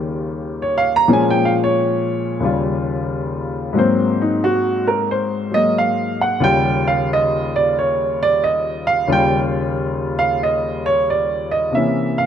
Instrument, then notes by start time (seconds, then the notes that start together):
upright piano
Already playing: D#2 C#3 D#3 G3 A#3 F4 G4
0.62 C#5
0.78 F5
0.96 A#5
1.08 A#2 F3 G#3 C#4
1.13 G#5
1.30 G5
1.45 F5
1.64 C#5
2.40 D#2 C#3 G3
2.45 F4
3.73 G#2 F#3 A#3
3.78 C4 C5
4.22 D#4
4.44 F#4
4.88 A#4
5.11 C5
5.51 F#3 G#3 A#3 D#5
5.78 F5
6.21 F#5
6.40 D#2 C#3 G3 F4 G5
6.87 F5
7.13 D#5
7.56 D5
7.79 C#5
8.23 D5
8.44 D#5
8.87 F5
9.07 D#2 C#3 G3 F4
9.12 G5
10.19 F5
10.43 D#5
10.86 C#5
11.10 D5
11.51 D#5
11.71 C3 A#3 C#4 E5
11.76 E3
12.18 F5